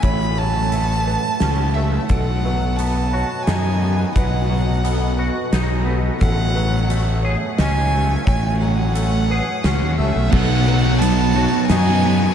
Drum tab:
CC |------|------|------|------|
HH |x-x-x-|x-x-x-|x-x-x-|x-x-x-|
SD |----o-|----o-|----o-|----o-|
BD |o-----|o-----|o-----|o-----|

CC |------|x-----|
HH |x-x-x-|--x-x-|
SD |----o-|----o-|
BD |o-----|o-----|